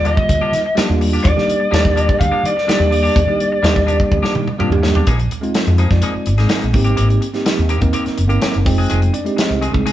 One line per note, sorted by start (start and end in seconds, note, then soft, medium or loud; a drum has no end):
0.00 0.18 D#2 medium
0.00 0.63 D3 medium
0.00 0.62 G3 medium
0.00 0.63 A#3 medium
0.00 0.63 F4 medium
0.04 0.17 F3 medium
0.04 0.17 A#3 medium
0.04 0.17 D4 medium
0.04 0.17 G4 medium
0.04 0.74 D#5 medium
0.04 closed hi-hat medium
0.17 muted clean electric guitar stroke soft
0.17 kick medium
0.29 0.38 D2 medium
0.29 kick medium
0.29 closed hi-hat medium
0.41 0.53 F3 medium
0.41 0.53 A#3 medium
0.41 0.53 D4 medium
0.41 0.53 G4 medium
0.52 0.62 D#3 medium
0.52 snare soft
0.52 closed hi-hat medium
0.66 muted clean electric guitar stroke soft
0.75 0.89 F3 medium
0.75 0.86 G3 loud
0.75 0.87 A#3 medium
0.75 0.89 A#3 medium
0.75 0.87 D4 medium
0.75 0.89 D4 medium
0.75 0.87 G4 loud
0.75 0.88 G4 medium
0.75 muted fretless electric bass stroke soft
0.75 snare medium
0.75 closed hi-hat medium
0.88 1.17 D#2 medium
0.88 1.29 G3 medium
0.88 1.30 A#3 medium
0.88 1.30 D4 medium
0.88 1.30 F4 medium
0.88 muted clean electric guitar stroke soft
1.01 muted clean electric guitar stroke soft
1.01 open hi-hat medium
1.13 1.28 A#3 soft
1.13 1.28 D4 soft
1.13 1.27 G4 soft
1.24 1.34 D#2 loud
1.24 2.23 D5 medium
1.24 kick loud
1.24 closed hi-hat medium
1.35 1.55 D#3 medium
1.35 1.67 G3 medium
1.35 1.67 A#3 medium
1.35 1.67 D4 medium
1.35 1.67 G4 medium
1.35 muted clean electric guitar stroke soft
1.35 snare soft
1.49 closed hi-hat medium
1.60 muted clean electric guitar stroke soft
1.70 2.09 D#2 medium
1.70 1.84 F3 medium
1.70 2.53 G3 medium
1.70 2.53 A#3 medium
1.70 1.84 A#3 medium
1.70 2.54 D4 medium
1.70 1.83 D4 medium
1.70 2.54 G4 medium
1.70 1.83 G4 medium
1.70 closed hi-hat medium
1.74 snare loud
1.84 muted clean electric guitar stroke soft
1.84 kick medium
1.96 2.08 F3 medium
1.96 2.08 A#3 medium
1.96 2.07 D4 medium
1.96 2.07 G4 medium
1.96 closed hi-hat medium
2.08 muted clean electric guitar stroke soft
2.08 kick medium
2.20 2.30 D2 medium
2.20 2.44 F5 medium
2.20 kick medium
2.20 closed hi-hat medium
2.31 2.43 F3 medium
2.31 2.43 A#3 medium
2.31 2.43 D4 medium
2.31 2.44 G4 medium
2.43 2.53 D#3 medium
2.43 2.90 D5 medium
2.43 muted clean electric guitar stroke soft
2.43 closed hi-hat medium
2.57 muted clean electric guitar stroke soft
2.57 snare soft
2.67 2.80 F3 medium
2.67 2.78 G3 medium
2.67 2.78 A#3 medium
2.67 2.79 A#3 medium
2.67 2.78 D4 medium
2.67 2.78 G4 medium
2.67 muted fretless electric bass stroke soft
2.67 snare loud
2.67 closed hi-hat medium
2.79 3.08 D#2 medium
2.79 3.20 G3 medium
2.79 3.21 A#3 medium
2.79 3.21 D4 medium
2.79 3.21 G4 medium
2.79 muted clean electric guitar stroke soft
2.91 4.55 D5 medium
2.91 muted clean electric guitar stroke soft
2.91 open hi-hat medium
3.03 3.18 A#3 soft
3.03 3.18 D4 soft
3.03 3.18 G4 medium
3.16 3.25 D#2 loud
3.16 kick loud
3.16 closed hi-hat medium
3.27 3.46 D#3 medium
3.27 3.58 G3 medium
3.27 3.58 A#3 medium
3.27 3.59 D4 medium
3.27 3.59 G4 medium
3.27 muted clean electric guitar stroke soft
3.40 closed hi-hat medium
3.52 muted clean electric guitar stroke soft
3.63 4.00 D#2 medium
3.63 3.75 F3 medium
3.63 4.46 G3 medium
3.63 3.75 A#3 medium
3.63 4.46 A#3 medium
3.63 3.74 D4 medium
3.63 4.46 D4 medium
3.63 3.74 G4 medium
3.63 4.46 G4 medium
3.63 snare loud
3.63 closed hi-hat medium
3.76 muted clean electric guitar stroke soft
3.76 kick medium
3.86 3.99 F3 medium
3.86 3.98 A#3 medium
3.86 3.97 D4 medium
3.86 3.97 G4 medium
3.86 closed hi-hat soft
3.98 muted clean electric guitar stroke soft
3.98 kick medium
4.12 4.21 D2 medium
4.12 kick medium
4.12 high tom medium
4.22 4.34 F3 medium
4.22 4.34 A#3 medium
4.22 4.34 D4 medium
4.22 4.34 G4 medium
4.22 snare medium
4.35 4.45 D#3 medium
4.35 mid tom medium
4.47 muted clean electric guitar stroke soft
4.47 mid tom medium
4.58 4.71 F3 medium
4.58 4.69 G3 medium
4.58 4.70 A#3 medium
4.58 4.70 D4 medium
4.58 4.70 F4 loud
4.58 4.69 G4 medium
4.58 muted fretless electric bass stroke soft
4.58 mid tom medium
4.70 4.98 D#2 medium
4.70 5.07 G3 medium
4.70 5.07 A#3 medium
4.70 5.07 D4 medium
4.70 5.08 G4 medium
4.70 muted clean electric guitar stroke soft
4.70 mid tom medium
4.83 muted clean electric guitar stroke soft
4.83 snare loud
4.95 5.06 A#3 soft
4.95 5.07 D4 medium
4.95 5.07 G4 medium
4.95 floor tom medium
5.07 5.26 A#1 loud
5.07 5.19 F3 medium
5.07 5.19 A#3 medium
5.07 5.19 D#4 medium
5.07 5.19 G#4 medium
5.07 kick loud
5.07 closed hi-hat medium
5.19 muted clean electric guitar stroke soft
5.19 closed hi-hat soft
5.31 muted clean electric guitar stroke soft
5.31 closed hi-hat medium
5.41 5.83 G#3 medium
5.41 5.84 C4 medium
5.41 5.84 D#4 medium
5.41 5.84 F4 medium
5.41 closed hi-hat soft
5.54 muted clean electric guitar stroke soft
5.54 snare loud
5.54 closed hi-hat medium
5.66 5.86 F2 medium
5.66 5.79 G#4 medium
5.66 muted clean electric guitar stroke soft
5.66 closed hi-hat soft
5.78 5.91 F3 medium
5.78 5.90 A#3 medium
5.78 5.90 D#4 medium
5.78 5.89 G#4 medium
5.78 5.91 C5 medium
5.78 closed hi-hat medium
5.90 6.00 F2 medium
5.90 6.32 G#3 medium
5.90 6.32 C4 medium
5.90 6.32 D#4 medium
5.90 6.32 F4 medium
5.90 6.59 D5 medium
5.90 muted clean electric guitar stroke soft
5.90 kick medium
5.90 snare soft
6.02 6.15 F3 medium
6.02 6.14 A#3 medium
6.02 6.15 D#4 medium
6.02 6.14 G#4 medium
6.02 closed hi-hat medium
6.15 muted fretless electric bass stroke soft
6.15 muted clean electric guitar stroke soft
6.26 6.45 G#1 medium
6.26 muted clean electric guitar stroke soft
6.26 closed hi-hat medium
6.38 6.75 G#3 medium
6.38 6.48 A#3 soft
6.38 6.73 C4 medium
6.38 6.48 D#4 soft
6.38 6.73 D#4 medium
6.38 6.49 G#4 soft
6.38 6.75 G#4 medium
6.38 snare soft
6.38 closed hi-hat soft
6.49 6.64 F3 medium
6.49 6.65 A#3 medium
6.49 6.65 D#4 medium
6.49 6.65 G#4 medium
6.49 snare loud
6.49 closed hi-hat medium
6.61 6.74 A#1 medium
6.61 closed hi-hat soft
6.73 6.93 G#1 medium
6.73 7.26 A#3 medium
6.73 7.26 C4 medium
6.73 7.26 D#4 medium
6.73 7.26 G4 medium
6.73 muted clean electric guitar stroke soft
6.73 kick medium
6.73 open hi-hat medium
6.84 6.95 A#3 soft
6.84 6.96 C4 soft
6.84 6.96 G4 medium
6.84 closed hi-hat soft
6.96 7.17 G#1 loud
6.96 7.10 D#3 medium
6.96 7.09 A#3 medium
6.96 7.09 C4 medium
6.96 7.08 G4 medium
6.96 closed hi-hat medium
7.09 muted clean electric guitar stroke soft
7.09 closed hi-hat soft
7.21 muted clean electric guitar stroke soft
7.21 closed hi-hat medium
7.34 7.75 A#3 medium
7.34 7.75 C4 medium
7.34 7.75 D#4 medium
7.34 7.76 G4 medium
7.34 snare soft
7.34 closed hi-hat soft
7.45 muted clean electric guitar stroke soft
7.45 snare loud
7.45 closed hi-hat medium
7.57 7.77 D#2 medium
7.57 muted clean electric guitar stroke soft
7.57 closed hi-hat soft
7.69 7.82 D#3 medium
7.69 7.81 A#3 medium
7.69 7.80 C4 medium
7.69 7.80 G4 medium
7.69 closed hi-hat medium
7.80 7.91 D#2 medium
7.80 8.22 A#3 medium
7.80 8.22 C4 medium
7.80 8.22 D#4 medium
7.80 8.23 A#4 loud
7.80 muted clean electric guitar stroke soft
7.80 kick medium
7.80 closed hi-hat soft
7.93 8.06 D#3 medium
7.93 8.04 A#3 medium
7.93 8.04 C4 medium
7.93 8.04 G4 medium
7.93 closed hi-hat medium
8.05 muted clean electric guitar stroke soft
8.05 muted fretless electric bass stroke soft
8.05 snare soft
8.05 closed hi-hat soft
8.18 8.37 G1 medium
8.18 muted clean electric guitar stroke soft
8.18 closed hi-hat medium
8.28 8.65 A#3 medium
8.28 8.40 A#3 soft
8.28 8.64 C4 medium
8.28 8.41 C4 medium
8.28 8.64 D#4 medium
8.28 8.41 G4 medium
8.28 8.66 A#4 medium
8.28 closed hi-hat soft
8.41 8.56 D#3 medium
8.41 8.56 A#3 medium
8.41 8.57 C4 medium
8.41 8.57 G4 medium
8.41 muted fretless electric bass stroke soft
8.41 snare medium
8.41 closed hi-hat medium
8.54 8.66 F#1 medium
8.54 closed hi-hat soft
8.65 8.85 F1 medium
8.65 9.17 G#3 medium
8.65 9.17 C4 medium
8.65 9.17 D#4 medium
8.65 9.11 F4 medium
8.65 9.10 G#4 medium
8.65 9.11 C5 medium
8.65 9.17 G5 medium
8.65 muted clean electric guitar stroke soft
8.65 kick loud
8.65 open hi-hat medium
8.78 8.89 G#3 soft
8.78 8.89 C4 soft
8.78 8.90 G#4 soft
8.90 9.09 F1 medium
8.90 9.02 D#3 medium
8.90 9.01 G#3 medium
8.90 9.01 C4 medium
8.90 9.01 G#4 medium
8.90 closed hi-hat medium
9.02 muted clean electric guitar stroke soft
9.02 closed hi-hat soft
9.13 9.37 D4 medium
9.13 9.37 D5 medium
9.13 muted clean electric guitar stroke soft
9.13 closed hi-hat medium
9.24 9.66 G#3 medium
9.24 9.67 C4 medium
9.24 9.39 D#4 medium
9.24 9.67 G4 medium
9.24 closed hi-hat soft
9.37 9.62 D#4 medium
9.37 9.62 C5 medium
9.37 muted clean electric guitar stroke soft
9.37 snare loud
9.37 closed hi-hat medium
9.41 9.63 G#4 medium
9.41 9.62 D#5 medium
9.49 9.69 C2 medium
9.49 muted clean electric guitar stroke soft
9.49 closed hi-hat soft
9.61 9.74 D#3 medium
9.61 9.73 G#3 medium
9.61 9.73 C4 medium
9.61 9.72 G#4 medium
9.61 closed hi-hat medium
9.72 9.83 C2 medium
9.72 9.93 G#3 medium
9.72 9.93 C4 medium
9.72 9.93 D#4 medium
9.72 9.93 G#4 medium
9.72 kick medium
9.86 9.93 D#3 medium
9.86 9.93 G#3 medium
9.86 9.93 C4 medium
9.86 9.93 G#4 medium
9.86 closed hi-hat medium